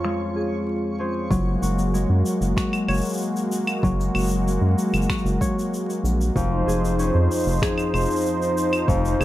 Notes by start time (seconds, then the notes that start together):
Already playing: F2 C#4 F4 G#4 C5 C#5
0.04 G#3, finger snap
0.36 G#4
0.99 C#4 G#4 C5
1.30 F#1 F#3 G#3 A#3 F#4, kick, shaker
1.62 F#1 F#4, shaker
1.79 shaker
1.94 G#3, shaker
2.09 F#2
2.26 shaker
2.41 F#1, shaker
2.56 F#4, finger snap, kick, shaker
2.73 claves, shaker
2.88 F#1 C#5, claves, shaker
2.94 shaker
2.97 shaker
3.01 shaker
3.05 shaker
3.09 shaker
3.13 shaker
3.17 shaker
3.21 shaker
3.36 shaker
3.52 shaker
3.67 claves, shaker
3.83 F#1 F#3, kick, shaker
4.00 shaker
4.15 F#1 F#4, claves, shaker
4.19 shaker
4.20 shaker
4.24 shaker
4.26 shaker
4.29 shaker
4.31 shaker
4.47 G#3, shaker
4.61 F#2
4.79 shaker
4.94 F#1, claves, shaker
5.02 shaker
5.09 F#4, finger snap, kick, shaker
5.18 shaker
5.25 F#1, shaker
5.41 C#5, kick, shaker
5.59 shaker
5.74 shaker
5.90 shaker
6.04 A#1, shaker
6.21 shaker
6.36 F1 F2 F3 D#4 C5, kick, shaker
6.67 F1 G#4, shaker
6.85 shaker
6.99 C#4, shaker
7.15 F2
7.31 shaker
7.36 shaker
7.39 shaker
7.43 F1, shaker
7.47 shaker
7.51 shaker
7.55 shaker
7.59 G#4, finger snap, kick, shaker
7.63 shaker
7.78 claves, shaker
7.94 F1 C5, claves, shaker
8.01 shaker
8.05 shaker
8.11 shaker
8.16 shaker
8.21 shaker
8.26 shaker
8.42 shaker
8.58 shaker
8.73 claves, shaker
8.88 F1 F2, kick, shaker
9.05 shaker
9.19 F1 G#4, claves, shaker